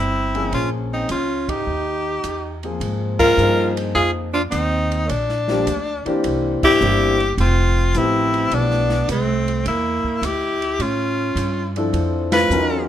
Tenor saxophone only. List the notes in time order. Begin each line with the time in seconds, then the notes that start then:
Already playing: E4
0.54 F4
0.93 D#4
1.11 F4
1.49 G4
3.19 A#4
3.95 G#4
4.34 F4
4.51 D#4
5.07 C#4 D4
6.64 G4
7.41 F4
7.98 E4
8.54 D4
9.11 C4
9.68 E4
10.25 G4
10.82 F4
12.33 B4